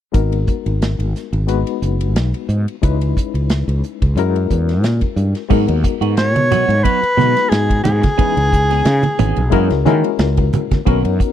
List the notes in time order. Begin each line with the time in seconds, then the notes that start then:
0.12 G#1 G#3 B3 D#4 F#4 A#4, kick, hi-hat pedal, ride
0.32 ride
0.47 kick, hi-hat pedal
0.66 G#1, ride
0.82 snare, hi-hat pedal, ride
0.99 G#1, ride
1.16 snare, hi-hat pedal
1.33 G#1, ride
1.47 G#3 B3 D#4 F#4 B4, hi-hat pedal, ride
1.67 ride
1.82 F#1, hi-hat pedal
2.01 ride
2.16 B1, snare, hi-hat pedal, ride
2.34 ride
2.49 G#2, hi-hat pedal
2.68 ride
2.82 C#2 G#3 C#4 D#4 E4 B4, kick, hi-hat pedal, ride
3.01 ride
3.17 kick, hi-hat pedal
3.34 C#2, ride
3.50 snare, hi-hat pedal, ride
3.68 C#2, ride
3.84 hi-hat pedal
4.02 C#2, kick, ride
4.16 F#2 G#3 C#4 E4 F#4 A#4, hi-hat pedal, ride
4.36 ride
4.50 E2, kick, hi-hat pedal
4.69 snare, ride
4.83 A#2, snare, hi-hat pedal, ride
5.01 kick, ride
5.16 G2, hi-hat pedal
5.35 snare, ride
5.49 G#2 F#3 G#3 B3 D#4 F#4 A#4, kick, crash
5.68 D#2, muted clean electric guitar stroke, ride
5.83 muted clean electric guitar stroke, kick, hi-hat pedal
6.01 G#2 B3 D#4 F#4, ride
6.17 C#5, muted clean electric guitar stroke, snare, ride
6.35 B2, muted clean electric guitar stroke, ride, high conga
6.51 F#3 B3 D#4 F#4, hi-hat pedal, low conga
6.69 G#2, ride
6.84 F#3 B3 D#4 F#4 B4, kick, ride
7.02 muted clean electric guitar stroke, muted fretless electric bass stroke, ride
7.17 B2 F#3 G#3 B3 D#4 F#4 B4, snare, hi-hat pedal, high conga
7.37 snare, ride
7.49 G#2 G#4, snare, ride
7.69 muted clean electric guitar stroke, kick, ride
7.84 G#2 G#4, muted clean electric guitar stroke, hi-hat pedal, high conga, low conga
8.02 muted clean electric guitar stroke, kick, snare, ride, high conga
8.18 E3 G#3 B3 C#4 D#4 E4 G#4 B4, muted fretless electric bass stroke, kick, ride
8.37 C#2, muted clean electric guitar stroke, ride
8.52 muted clean electric guitar stroke, kick, hi-hat pedal
8.71 B3 C#4 G#4, snare, ride
8.85 C#3, muted clean electric guitar stroke, snare, ride
9.03 muted clean electric guitar stroke, ride, high conga
9.19 G#1 E3 B3 C#4 G#4, hi-hat pedal, low conga
9.36 B1, ride
9.50 F#2 E3 G#3 A#3 C#4 E4 F#4 G#4 A#4, kick, ride
9.70 C#2, muted clean electric guitar stroke, snare, ride
9.85 D#3 E3 G#3 A#3 C#4 E4 F#4 G#4 A#4, snare, hi-hat pedal, high conga
10.04 ride
10.19 C#2, snare, ride
10.37 muted clean electric guitar stroke, kick, ride
10.53 muted clean electric guitar stroke, hi-hat pedal, high conga, low conga
10.71 muted clean electric guitar stroke, kick, snare, ride, high conga
10.85 B1 D#3 A#3 B3 C#4 D#4 F#4 A#4, kick, ride
11.05 F#2, muted clean electric guitar stroke, ride
11.19 muted clean electric guitar stroke, kick, hi-hat pedal